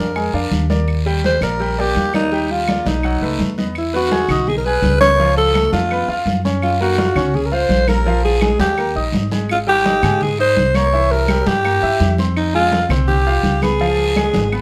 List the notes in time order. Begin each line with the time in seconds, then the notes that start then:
Already playing: F2 A#4
0.15 G#3 G#4 G#5, high conga, long guiro, claves
0.33 F2 D4 D5 F5, high conga
0.51 D#2, high conga, short guiro
0.70 A#3 A#4 D5, high conga, short guiro
0.88 high conga, long guiro, claves
1.06 G3 G4 G5, high conga
1.24 C5, high conga, short guiro
1.41 A#1 A#3 A#4 D5, high conga, short guiro, claves
1.60 G3 G4 G5, high conga, long guiro
1.78 A#3 G4 A#4 D5, high conga
1.95 D#2, high conga, short guiro
2.14 A#3 D#4 A#4 D5, high conga, short guiro, claves
2.32 G3 G4 G5, high conga, long guiro
2.50 F4, high conga
2.68 A#3 A#4 D5, high conga, short guiro, claves
2.86 B1 D#4, high conga, short guiro
3.03 F#3 F#4 F#5, high conga, long guiro, claves
3.21 C#2 A3 A4 B4, high conga
3.39 E2, high conga, short guiro
3.58 B3 B4 D#5, high conga, short guiro
3.75 E4, high conga, long guiro, claves
3.94 B3 F#4 B4 B5, high conga
4.11 G#4 G#5 G#6, high conga, short guiro
4.28 B1 D#4 D#5 D#6, high conga, low conga, short guiro, claves
4.47 G#4, high conga, low conga, long guiro
4.57 A#4
4.65 G#4 B4 G#5 G#6, high conga
4.82 C#2, high conga, short guiro
5.01 B3 B4 C#5 B5, high conga, short guiro, claves
5.19 F3 F4 F5, high conga, long guiro
5.37 A4, high conga
5.55 A3 A4 A5, high conga, short guiro, claves
5.72 F2 F4, high conga, short guiro
5.91 B3 B4 B5, high conga, long guiro, claves
6.08 E2 F4 F5 F6, high conga
6.26 F#2, high conga, short guiro
6.45 C#4 C#5 C#6, high conga, short guiro
6.62 F4, high conga, long guiro, claves
6.80 A#3 F#4 A#4 A#5, high conga
6.98 F4 F5 F6, high conga, short guiro
7.15 C#2 C#4 C#5 C#6, high conga, low conga, short guiro, claves
7.34 G#4, high conga, low conga, long guiro
7.46 A#4
7.52 F4 C5 F5 F6, high conga
7.69 A#1, high conga, short guiro
7.88 A#3 A#4 A#5, high conga, short guiro, claves
8.05 F3 F4 F5, high conga, long guiro
8.24 G#4, high conga
8.41 G#3 G#4 G#5, high conga, short guiro, claves
8.59 D#2 G4, high conga, short guiro
8.78 A#3 A#4 A#5, high conga, long guiro, claves
8.95 A#1 D#4 D#5 D#6, high conga
9.12 G#1, high conga, short guiro
9.31 G#3 G#4 G#5, high conga, short guiro
9.49 F4, high conga, long guiro, claves
9.67 G3 G4 G5, high conga
9.85 D#4 D#5 D#6, high conga, short guiro
10.02 G#2 G#3 G#4 G#5, high conga, low conga, short guiro, claves
10.21 G#4, high conga, low conga, long guiro
10.39 D#4 C5 D#5 D#6, high conga
10.56 C2, high conga, short guiro
10.75 A#3 A#4 C#5 A#5, high conga, short guiro, claves
10.93 E3 E4 E5, high conga, long guiro
11.11 A#4, high conga
11.28 G3 G4 G5, high conga, short guiro, claves
11.46 G2 G4, high conga, short guiro
11.64 A#3 A#4 A#5, high conga, long guiro, claves
11.83 G2 E4 E5 E6, high conga
12.00 F2, high conga, short guiro
12.18 C4 C5 C6, high conga, short guiro
12.36 D#4, long guiro, claves
12.54 G#3 F4 G#4 G#5, high conga
12.72 F4 F5 F6, high conga, short guiro
12.89 C2 C4 C5 C6, high conga, low conga, short guiro, claves
13.08 G4, high conga, low conga, long guiro
13.26 F4 F5 F6, high conga
13.43 C#2, high conga, short guiro
13.62 B3 G#4 B4 B5, high conga, short guiro, claves
13.80 F3 F4 F5, long guiro
13.98 high conga
14.16 G#3 G#4 G#5, high conga, short guiro, claves
14.33 G#1, high conga, short guiro
14.52 B3 B4 B5, high conga, long guiro, claves